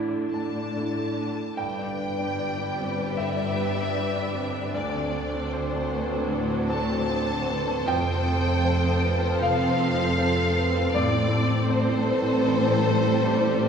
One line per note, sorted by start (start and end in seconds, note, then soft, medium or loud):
0.00 1.33 A2 soft
0.00 1.60 A2 soft
0.00 1.61 A2 soft
0.00 1.34 D3 soft
0.00 1.61 E3 soft
0.00 0.32 D4 soft
0.00 0.76 D4 soft
0.00 1.34 D4 soft
0.00 0.72 E4 soft
0.00 0.76 E4 soft
0.00 1.15 E4 soft
0.00 0.74 A4 soft
0.00 0.77 A4 soft
0.33 2.10 D4 soft
0.33 1.54 A5 medium
0.75 1.54 D4 soft
0.75 1.54 E4 soft
0.75 1.61 A4 soft
0.75 1.54 A4 soft
1.17 1.61 E4 soft
1.57 4.70 G1 medium
1.57 3.15 G2 soft
1.57 3.12 G2 soft
1.57 4.70 G2 soft
1.57 4.70 G3 medium
1.57 7.83 D4 soft
1.57 4.70 G4 medium
1.57 4.70 B4 medium
1.57 3.12 G5 medium
1.57 3.16 G5 medium
1.79 2.10 D4 soft
1.84 3.42 D3 soft
1.99 2.30 B4 soft
2.11 3.68 D4 soft
2.19 2.50 D4 soft
2.37 2.89 G4 soft
2.37 2.70 D5 soft
2.58 2.89 D4 soft
2.64 4.20 B4 soft
2.78 2.97 C4 soft
2.90 3.94 G4 soft
2.98 3.29 D4 soft
3.16 4.77 G2 soft
3.16 3.48 D3 soft
3.16 4.74 E5 medium
3.16 4.70 E5 medium
3.37 3.68 D4 soft
3.43 4.73 D3 soft
3.56 3.87 B4 soft
3.69 7.59 D4 soft
3.76 4.07 D4 soft
3.95 4.47 G4 soft
3.95 4.27 D5 soft
4.15 4.47 D4 soft
4.22 4.77 B4 soft
4.34 4.54 C4 soft
4.48 4.77 G4 soft
4.54 4.74 D4 soft
4.74 6.27 D2 soft
4.74 7.88 D2 medium
4.74 6.29 D3 soft
4.74 7.84 F#3 medium
4.74 10.92 A4 medium
4.74 10.92 C5 medium
4.74 5.49 D5 medium
4.74 5.52 D5 soft
4.94 5.26 C4 soft
5.00 6.55 A3 soft
5.14 5.45 A4 soft
5.27 6.82 C4 soft
5.34 5.65 C4 soft
5.53 6.04 F#4 soft
5.53 6.31 C5 medium
5.53 5.84 C5 soft
5.73 6.04 C4 soft
5.80 7.34 A4 soft
5.92 6.12 B3 soft
6.05 7.08 F#4 soft
6.12 6.43 C4 soft
6.31 6.62 A2 soft
6.31 7.90 D3 soft
6.50 6.82 C4 soft
6.56 10.46 A3 soft
6.70 7.02 A4 soft
6.70 7.83 A5 medium
6.70 7.84 A5 medium
6.83 8.12 C4 soft
6.89 7.21 C4 soft
7.09 7.61 F#4 soft
7.09 7.40 C5 soft
7.28 7.60 C4 soft
7.35 8.63 A4 soft
7.48 7.68 B3 soft
7.62 7.91 F#4 soft
7.67 7.87 C4 soft
7.86 10.92 F1 medium
7.86 9.37 F2 medium
7.86 10.92 F2 medium
7.86 9.41 F3 medium
7.86 10.92 F3 medium
7.86 13.69 C4 medium
7.86 9.42 G5 medium
7.86 9.38 G5 medium
8.06 8.37 C4 soft
8.13 9.67 C4 soft
8.26 8.57 A4 soft
8.38 9.93 F4 soft
8.45 8.76 C4 soft
8.64 9.15 A4 soft
8.64 8.95 C5 soft
8.84 9.15 C4 soft
8.91 10.43 C5 soft
9.02 9.22 B3 soft
9.16 10.18 A4 soft
9.22 9.53 C4 soft
9.41 9.72 C3 soft
9.41 10.99 F3 soft
9.41 10.95 F5 medium
9.41 10.92 F5 medium
9.61 9.92 C4 soft
9.68 11.44 C4 soft
9.80 10.11 A4 soft
9.94 10.99 F4 soft
9.98 10.30 C4 soft
10.18 10.69 A4 medium
10.18 10.49 C5 soft
10.37 10.68 C4 soft
10.44 13.69 C5 soft
10.57 10.76 B3 soft
10.70 11.96 A4 soft
10.76 10.95 C4 soft
10.94 13.69 A1 medium
10.94 12.47 A2 medium
10.94 13.69 A2 medium
10.94 12.44 A2 medium
10.94 13.69 G3 medium
10.94 13.69 A4 medium
10.94 13.69 C5 medium
10.94 11.71 D5 medium
10.94 11.67 D5 medium
11.13 11.44 C4 soft
11.20 12.73 E3 soft
11.32 11.63 A4 soft
11.45 12.98 C4 medium
11.52 11.82 C4 soft
11.70 12.22 G4 soft
11.70 12.01 C5 medium
11.70 12.47 C5 medium
11.89 12.21 C4 soft
11.97 13.49 A4 soft
12.08 12.28 B3 soft
12.23 13.24 G4 soft
12.28 12.59 C4 soft
12.48 13.69 A2 medium
12.48 12.79 E3 soft
12.68 12.98 C4 medium
12.74 13.69 E3 soft
12.86 13.17 A4 medium
12.99 13.69 C4 soft
13.06 13.36 C4 medium
13.24 13.69 G4 medium
13.24 13.55 C5 medium
13.43 13.69 C4 soft
13.51 13.69 A4 medium
13.63 13.69 B3 soft